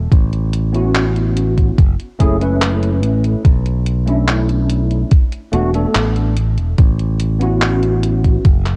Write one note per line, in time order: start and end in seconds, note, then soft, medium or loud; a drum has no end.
0.12 1.70 A1 medium
0.12 kick loud
0.12 closed hi-hat medium
0.33 closed hi-hat soft
0.53 closed hi-hat medium
0.73 1.75 B3 medium
0.73 1.75 C#4 medium
0.73 1.76 E4 medium
0.73 1.76 F#4 medium
0.73 closed hi-hat soft
0.95 clap loud
0.95 closed hi-hat medium
1.16 closed hi-hat soft
1.37 closed hi-hat medium
1.58 kick medium
1.58 closed hi-hat soft
1.78 1.94 F#1 medium
1.78 kick loud
1.78 closed hi-hat medium
2.00 closed hi-hat soft
2.19 3.03 F#1 medium
2.19 2.35 A3 loud
2.19 2.36 C#4 medium
2.19 2.36 E4 medium
2.19 2.36 G#4 loud
2.19 kick medium
2.19 closed hi-hat medium
2.39 3.41 A3 medium
2.39 3.42 C#4 medium
2.39 3.42 E4 medium
2.39 3.43 B4 medium
2.39 closed hi-hat soft
2.62 clap loud
2.62 closed hi-hat medium
2.83 closed hi-hat soft
3.03 3.34 A1 medium
3.03 closed hi-hat medium
3.24 closed hi-hat soft
3.45 5.03 B1 medium
3.45 kick loud
3.45 closed hi-hat medium
3.66 closed hi-hat soft
3.86 closed hi-hat medium
4.06 5.08 A3 medium
4.06 5.09 C#4 medium
4.06 5.09 D4 medium
4.06 5.10 E4 medium
4.06 closed hi-hat soft
4.28 clap loud
4.28 closed hi-hat medium
4.49 closed hi-hat soft
4.70 closed hi-hat medium
4.91 closed hi-hat soft
5.11 kick loud
5.11 closed hi-hat medium
5.32 closed hi-hat soft
5.52 5.84 E1 medium
5.52 5.69 A3 loud
5.52 5.69 B3 medium
5.52 5.69 D4 medium
5.52 5.69 F#4 loud
5.52 closed hi-hat medium
5.73 6.34 A3 medium
5.73 6.34 B3 medium
5.73 6.34 D4 medium
5.73 6.34 A4 medium
5.73 closed hi-hat soft
5.95 6.58 A1 medium
5.95 clap loud
5.95 closed hi-hat medium
6.16 closed hi-hat soft
6.36 closed hi-hat medium
6.58 6.73 E1 medium
6.58 closed hi-hat soft
6.78 8.36 A1 medium
6.78 kick loud
6.78 closed hi-hat medium
6.99 closed hi-hat soft
7.20 closed hi-hat medium
7.39 8.42 B3 medium
7.39 8.42 C#4 medium
7.39 8.43 E4 medium
7.39 8.43 F#4 medium
7.39 closed hi-hat soft
7.61 clap loud
7.61 closed hi-hat medium
7.83 closed hi-hat soft
8.03 closed hi-hat medium
8.24 kick medium
8.24 closed hi-hat soft
8.45 8.76 F#1 medium
8.45 kick loud
8.45 closed hi-hat medium
8.66 clap soft
8.66 closed hi-hat soft